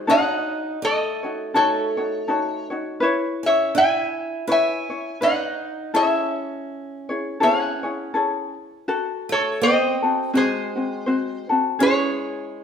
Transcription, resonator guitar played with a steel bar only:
0.10 D#5 F#5
0.85 A4 D#5
1.56 A4 C#5
3.46 C#5 E5
3.78 E5 G#5
4.52 E5 G#5
5.23 D#5 F#5
5.96 C#5 E5
7.43 C#5 F#5
9.32 A4 C#5
9.63 C5 D#5
10.37 G#4 C5
11.83 G#4 C#5

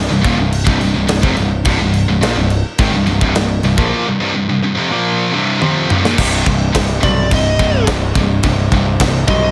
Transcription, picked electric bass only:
0.10 C1
0.25 D#1
0.37 C1
0.66 C1
0.82 C1
0.95 C1
1.09 C1
1.23 F1
1.37 C1
1.66 C1
1.79 C1
2.08 C1
2.21 A#1
2.35 C1
2.79 G#1
2.94 C1
3.07 C1
3.22 C1
3.36 C1
3.63 C1
3.78 A#1
6.19 C1
6.47 C1
6.75 C1
7.03 B1
7.32 C1
7.60 C1
7.87 C1
8.15 C1
8.44 C1
8.72 C1
9.00 C1
9.28 B1

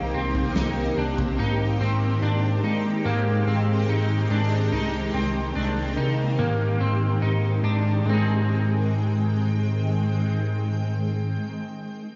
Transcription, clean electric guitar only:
Already playing: A#3
0.14 C4
0.56 D#4
0.98 D4
1.39 D#4
1.81 C4
2.22 D4
2.64 D#4
3.05 A#3
3.47 C4
3.89 D#4
4.31 D4
4.72 D#4
5.14 C4
5.56 D4
5.97 D#4
6.39 A#3
6.80 C4
7.22 D#4
7.64 D4
8.06 G#3 C4
8.13 D#4 G#4

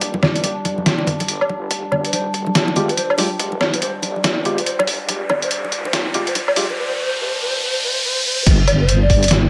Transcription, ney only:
2.04 C5
2.89 C5
3.74 C5
4.58 C5
5.43 C5
5.85 C5
6.27 C5
6.69 C5
6.78 C5
6.99 C5
7.20 C5
7.41 C5
7.62 C5
7.83 C5
8.04 C5
8.25 C5
8.80 C5
9.01 D5

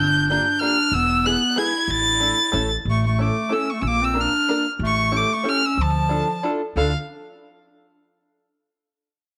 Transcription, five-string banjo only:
0.30 A#3 D4 F4 G4
0.61 A#3 D4 F4 G4
1.24 G#3 B3 E4 G#4
1.56 G#3 B3 E4 G#4
2.20 A3 D4 E4 A4
2.52 A3 C#4 E4 A4
3.19 A3 C#4 E4 A4
3.49 A3 C#4 E4 A4
4.14 A#3 D4 F4 A#4
4.49 A#3 D4 F4 A#4
5.12 C#4 E4 G4 A4
5.44 C#4 E4 G4 A4
6.09 D4 E4 F4 A4
6.43 D4 E4 F4 A4
6.77 D4 E4 F4 A4

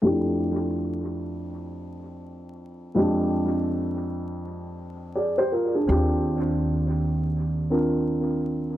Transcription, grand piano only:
0.02 F2 A3 D4 E4 G4
2.95 F2 G#3 C4 D4 G4
5.15 G#4 D5
5.38 G4 C5
5.52 F4 A#4
5.74 D4 G#4
5.87 C4 D4 F4 G4
7.70 C4 D4 F4 A#4

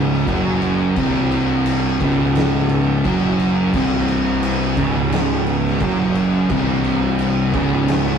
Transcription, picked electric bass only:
Already playing: C#1
0.27 F#1
0.96 C1
2.01 C#1
3.05 F#1
3.74 C1
4.77 C#1
5.81 F#1
6.50 C1
7.53 C#1

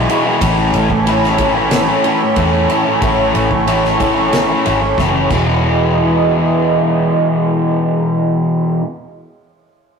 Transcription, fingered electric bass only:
0.42 A1
0.75 A1
2.37 E2
3.02 A1
3.36 A1
4.67 G#1
4.98 F#1
5.31 E1

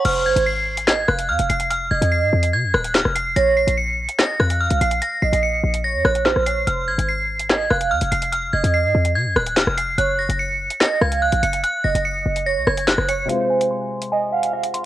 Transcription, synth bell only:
0.05 F6
0.26 G#6
0.46 C7
0.88 G#6
1.08 F#6
1.29 F6
1.50 C7
1.71 F6
1.91 G#6
2.12 C7
2.53 G#6
2.74 F#6
2.95 F6
3.15 C7
3.36 A#6
3.57 C7
3.77 C#7
4.19 A#6
4.39 F#6
4.60 F6
4.81 C7
5.02 A#6
5.22 C7
5.43 C#7
5.84 A#6
6.05 F#6
6.26 F6
6.46 C7
6.67 F6
6.88 G#6
7.09 C7
7.50 G#6
7.70 F#6
7.91 F6
8.12 C7
8.32 F6
8.53 G#6
8.74 C7
9.15 G#6
9.36 F#6
9.56 F6
9.77 C7
9.98 F#6
10.19 A#6
10.39 C#7
10.81 A#6
11.02 G#6
11.22 F#6
11.43 C#7
11.64 F#6
11.84 A#6
12.05 C#7
12.46 A#6
12.67 G#6
12.88 F#6
13.09 C#7
13.29 F5
13.50 G#5
13.71 C6
14.12 G#5
14.32 F#5
14.53 F5
14.74 C6

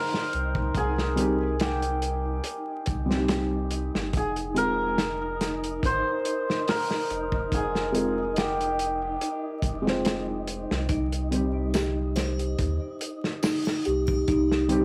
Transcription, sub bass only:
0.34 C2
0.75 C2
2.88 C2
3.94 G1
4.14 F1
5.83 G#1
7.10 F1
7.52 F1
9.63 F1
10.71 C2
10.90 C2
12.59 D#2
13.87 C2
14.28 C2

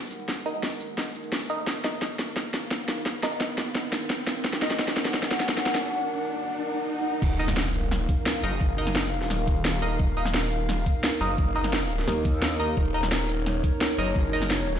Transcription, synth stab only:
0.46 D#4 A#4 D#5
1.50 D#4 A#4 D#5
1.84 D#4 A#4 D#5
3.23 D#4 A#4 D#5
4.62 D#4 A#4 D#5
7.39 D#4 A#4 D#5
8.43 D#4 A#4 D#5
8.78 D#4 A#4 D#5
9.82 D#4 A#4 D#5
10.17 D#4 A#4 D#5
11.21 D#4 A#4 D#5
11.56 D#4 A#4 D#5
12.60 D#4 A#4 D#5
12.94 D#4 A#4 D#5
13.98 D#4 A#4 D#5
14.33 D#4 A#4 D#5

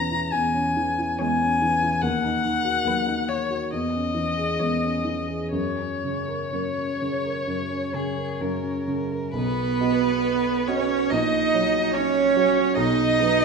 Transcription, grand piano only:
Already playing: E2 E3 C#4 E4
0.11 E4
0.33 E2
0.54 C#4
0.77 E3
0.98 E4
1.19 E2
1.42 C#4
1.62 E3
1.82 E4
2.02 D#2
2.23 D#4
2.45 D#3
2.65 F#4
2.85 D#2
3.07 D#4
3.28 D#3
3.50 F#4
3.73 E2
3.94 C#4
4.15 E3
4.37 G#4
4.60 E2
4.83 C#4
5.04 E3
5.28 G#4
5.52 F#2
5.79 C#4
6.04 C#3
6.28 A#4
6.52 F#2
6.77 C#4
7.02 C#3
7.25 A#4
7.47 F#2
7.70 C#4
7.94 C#3
8.17 A#4
8.41 F#2
8.63 C#4
8.87 C#3
9.12 A#4
9.33 B1
9.81 B3 F#4 D#5
10.68 B3 F#4 D#5
11.12 A#1
11.54 F#3 F#4 C#5
12.36 F#3 F#4 C#5
12.77 B1
13.19 F#3 D#4 B4

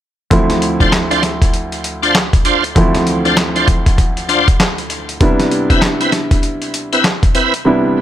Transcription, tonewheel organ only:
0.80 D4 F4 C5
1.11 D4 F4 C5
2.02 D4 F4 C5
2.45 D4 F4 C5
3.25 D4 F4 C5
3.56 D4 F4 C5
4.29 D4 F4 C5
5.70 C4 E4 B4
6.01 C4 E4 B4
6.93 C4 E4 B4
7.35 C4 E4 B4

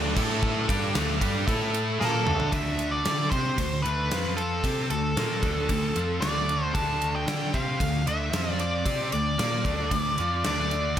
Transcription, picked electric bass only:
Already playing: D2
0.17 A2
0.69 G2
0.95 D2
1.21 G2
1.48 A2
2.01 A#2
2.27 D2
2.52 D2
3.07 D3
3.32 C3
3.58 D2
3.86 D2
4.12 F2
4.64 C3
4.90 D2
5.16 A#2
5.43 D2
5.69 D2
5.96 F2
6.21 D2
6.75 D2
7.27 D3
7.54 C3
7.80 D2
8.07 D2
8.33 F2
8.85 C3
9.13 D2
9.39 A#2
9.65 D2
9.91 D2
10.19 F2
10.45 D2

